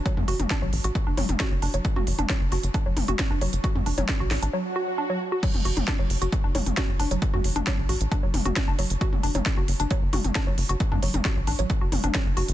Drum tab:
CC |----------------|----------------|----------------|x---------------|
HH |x-oxx-oxx-oxx-ox|x-oxx-oxx-oxx-ox|x-oxx-ox--------|x-oxx-oxx-oxx-ox|
SD |----o-------o---|----o-------o---|----o-o---------|----o-------o---|
T2 |-o-o------oo----|-o-o------oo----|-o-o------------|-o-o------oo----|
BD |o---o---o---o---|o---o---o---o---|o---o-----------|o---o---o---o---|

CC |----------------|----------------|----------------|
HH |x-oxx-oxx-oxx-ox|x-oxx-oxx-oxx-ox|x-oxx-oxx-oxx-ox|
SD |----o-------o---|----o-------o---|----o-------o---|
T2 |-o-o------oo----|-o-o------oo----|-o-o------oo----|
BD |o---o---o---o---|o---o---o---o---|o---o---o---o---|